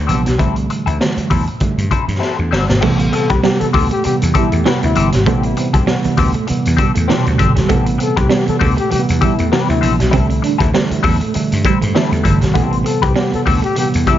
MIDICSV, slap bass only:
0, 0, Header, 1, 3, 480
1, 0, Start_track
1, 0, Key_signature, 0, "minor"
1, 0, Tempo, 607903
1, 312, Time_signature, 4, 2, 24, 8
1, 11200, End_track
2, 0, Start_track
2, 0, Title_t, "Slap bass"
2, 0, Program_c, 0, 36
2, 74, Note_on_c, 0, 34, 73
2, 188, Note_off_c, 0, 34, 0
2, 212, Note_on_c, 0, 35, 90
2, 300, Note_off_c, 0, 35, 0
2, 312, Note_on_c, 0, 36, 100
2, 517, Note_off_c, 0, 36, 0
2, 686, Note_on_c, 0, 38, 75
2, 777, Note_off_c, 0, 38, 0
2, 1035, Note_on_c, 0, 40, 85
2, 1149, Note_off_c, 0, 40, 0
2, 1404, Note_on_c, 0, 43, 79
2, 1497, Note_off_c, 0, 43, 0
2, 1644, Note_on_c, 0, 43, 86
2, 1737, Note_off_c, 0, 43, 0
2, 1887, Note_on_c, 0, 40, 76
2, 1979, Note_off_c, 0, 40, 0
2, 1992, Note_on_c, 0, 31, 83
2, 2108, Note_off_c, 0, 31, 0
2, 2123, Note_on_c, 0, 32, 89
2, 2216, Note_off_c, 0, 32, 0
2, 2232, Note_on_c, 0, 33, 99
2, 2439, Note_off_c, 0, 33, 0
2, 2610, Note_on_c, 0, 36, 98
2, 2701, Note_off_c, 0, 36, 0
2, 2955, Note_on_c, 0, 38, 93
2, 3071, Note_off_c, 0, 38, 0
2, 3339, Note_on_c, 0, 40, 90
2, 3426, Note_off_c, 0, 40, 0
2, 3575, Note_on_c, 0, 40, 100
2, 3664, Note_off_c, 0, 40, 0
2, 3818, Note_on_c, 0, 38, 98
2, 3905, Note_off_c, 0, 38, 0
2, 3927, Note_on_c, 0, 31, 91
2, 4038, Note_off_c, 0, 31, 0
2, 4058, Note_on_c, 0, 32, 94
2, 4145, Note_off_c, 0, 32, 0
2, 4158, Note_on_c, 0, 33, 107
2, 4362, Note_off_c, 0, 33, 0
2, 4532, Note_on_c, 0, 36, 102
2, 4622, Note_off_c, 0, 36, 0
2, 4880, Note_on_c, 0, 38, 96
2, 4993, Note_off_c, 0, 38, 0
2, 5267, Note_on_c, 0, 40, 89
2, 5350, Note_off_c, 0, 40, 0
2, 5503, Note_on_c, 0, 40, 96
2, 5588, Note_off_c, 0, 40, 0
2, 5742, Note_on_c, 0, 38, 89
2, 5827, Note_off_c, 0, 38, 0
2, 5840, Note_on_c, 0, 31, 90
2, 5953, Note_off_c, 0, 31, 0
2, 5980, Note_on_c, 0, 32, 90
2, 6066, Note_off_c, 0, 32, 0
2, 6082, Note_on_c, 0, 33, 110
2, 6284, Note_off_c, 0, 33, 0
2, 6455, Note_on_c, 0, 36, 86
2, 6543, Note_off_c, 0, 36, 0
2, 6805, Note_on_c, 0, 38, 91
2, 6916, Note_off_c, 0, 38, 0
2, 7183, Note_on_c, 0, 40, 94
2, 7268, Note_off_c, 0, 40, 0
2, 7418, Note_on_c, 0, 40, 99
2, 7504, Note_off_c, 0, 40, 0
2, 7654, Note_on_c, 0, 38, 88
2, 7742, Note_off_c, 0, 38, 0
2, 7765, Note_on_c, 0, 34, 83
2, 7875, Note_off_c, 0, 34, 0
2, 7901, Note_on_c, 0, 35, 92
2, 7986, Note_off_c, 0, 35, 0
2, 8001, Note_on_c, 0, 36, 113
2, 8203, Note_off_c, 0, 36, 0
2, 8377, Note_on_c, 0, 38, 82
2, 8464, Note_off_c, 0, 38, 0
2, 8718, Note_on_c, 0, 40, 109
2, 8831, Note_off_c, 0, 40, 0
2, 9102, Note_on_c, 0, 43, 80
2, 9187, Note_off_c, 0, 43, 0
2, 9339, Note_on_c, 0, 43, 94
2, 9425, Note_off_c, 0, 43, 0
2, 9570, Note_on_c, 0, 40, 89
2, 9660, Note_off_c, 0, 40, 0
2, 9676, Note_on_c, 0, 31, 86
2, 9790, Note_off_c, 0, 31, 0
2, 9818, Note_on_c, 0, 32, 105
2, 9904, Note_off_c, 0, 32, 0
2, 9912, Note_on_c, 0, 33, 107
2, 10117, Note_off_c, 0, 33, 0
2, 10291, Note_on_c, 0, 36, 93
2, 10380, Note_off_c, 0, 36, 0
2, 10633, Note_on_c, 0, 38, 89
2, 10748, Note_off_c, 0, 38, 0
2, 11015, Note_on_c, 0, 40, 87
2, 11102, Note_off_c, 0, 40, 0
2, 11200, End_track
3, 0, Start_track
3, 0, Title_t, "Muted slap bass strokes"
3, 926, Note_on_c, 9, 29, 50
3, 1005, Note_off_c, 9, 29, 0
3, 1273, Note_on_c, 9, 29, 50
3, 1352, Note_off_c, 9, 29, 0
3, 2857, Note_on_c, 9, 29, 52
3, 2936, Note_off_c, 9, 29, 0
3, 3204, Note_on_c, 9, 29, 57
3, 3283, Note_off_c, 9, 29, 0
3, 4790, Note_on_c, 9, 29, 48
3, 4869, Note_off_c, 9, 29, 0
3, 5134, Note_on_c, 9, 29, 57
3, 5213, Note_off_c, 9, 29, 0
3, 6699, Note_on_c, 9, 29, 54
3, 6778, Note_off_c, 9, 29, 0
3, 7047, Note_on_c, 9, 29, 54
3, 7126, Note_off_c, 9, 29, 0
3, 8617, Note_on_c, 9, 29, 51
3, 8696, Note_off_c, 9, 29, 0
3, 8968, Note_on_c, 9, 29, 60
3, 9047, Note_off_c, 9, 29, 0
3, 10537, Note_on_c, 9, 29, 54
3, 10616, Note_off_c, 9, 29, 0
3, 11200, End_track
0, 0, End_of_file